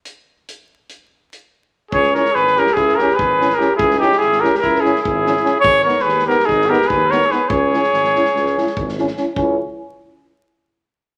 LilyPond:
<<
  \new Staff \with { instrumentName = "Trumpet" } { \time 9/8 \tempo 4. = 97 r1 r8 | cis''8 cis''8 b'8 ais'8 gis'8 ais'8 b'4 ais'8 | gis'8 g'8 gis'8 ais'8 ais'8 gis'8 gis'4. | cis''8 cis''8 b'8 ais'8 gis'8 ais'8 b'8 cis''8 b'8 |
cis''2.~ cis''8 r4 | r1 r8 | }
  \new Staff \with { instrumentName = "Trumpet" } { \time 9/8 r1 r8 | gis'8 ais'8 gis'8 g'8 e'8 g'8 gis'4 g'8 | e'8 dis'8 e'8 g'8 e'8 e'8 e'4. | gis'8 ais'8 gis'8 g'8 dis'8 g'8 gis'8 ais'8 gis'8 |
gis'2.~ gis'8 r4 | r1 r8 | }
  \new Staff \with { instrumentName = "French horn" } { \time 9/8 r1 r8 | r8 e'8 r8 e'8 r8 e'8 r8 e'8 e'8 | r8 e'8 r8 e'8 r8 e'8 r8 e'8 e'8 | r8 dis'8 r8 dis'8 r8 dis'8 r8 dis'8 dis'8 |
r8 e'8 r8 e'8 r8 e'8 r8 e'8 e'8 | e'8 r1 | }
  \new Staff \with { instrumentName = "Euphonium" } { \time 9/8 r1 r8 | r8 cis'8 r8 cis'8 r8 cis'8 r8 cis'8 cis'8 | r8 cis'8 r8 cis'8 r8 cis'8 r8 cis'8 cis'8 | r8 b8 r8 b8 r8 b8 r8 b8 b8 |
r8 cis'8 r8 cis'8 r8 cis'8 r8 cis'8 cis'8 | cis'8 r1 | }
  \new Staff \with { instrumentName = "Tuba" } { \clef bass \time 9/8 r1 r8 | cis,4 gis,,4 cis,4 gis,,4. | cis,4 gis,,4 cis,4 gis,,4. | gis,,4 dis,4 gis,,4 dis,4. |
cis,4 gis,,4 cis,4 gis,,4. | cis,8 r1 | }
  \new DrumStaff \with { instrumentName = "Drums" } \drummode { \time 9/8 hh4 hh4 hh4 hh4. | bd16 sn16 sn16 sn16 sn16 sn16 sn16 sn16 <bd sn>16 sn16 sn16 sn16 bd8 sn16 sn16 sn8 | bd16 sn16 sn16 sn16 sn16 sn16 sn16 sn16 <bd sn>16 sn16 sn16 sn16 bd8 sn16 sn16 sn8 | bd16 sn16 sn16 sn16 sn16 sn16 sn16 sn16 <bd sn>16 sn16 sn16 sn16 bd8 sn16 sn16 sn8 |
bd8 sn16 sn16 sn16 sn16 sn16 sn16 sn16 sn16 sn16 sn16 bd16 sn16 sn16 sn16 sn8 | bd4 r4 r4 r4. | }
>>